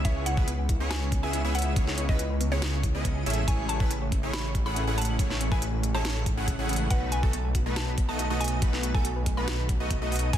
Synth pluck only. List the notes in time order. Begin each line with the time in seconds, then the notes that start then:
0.05 E5
0.26 F#5
0.90 G#5
1.23 G#5
1.55 F#5
2.09 D#5
2.52 C#5
3.48 G#5
3.69 A5
4.33 B5
4.66 B5
4.98 A5
5.52 G#5
5.94 A5
6.91 F#5
7.12 G#5
7.76 A5
8.09 A5
8.40 G#5
8.94 G#5
9.37 B5
10.33 G#5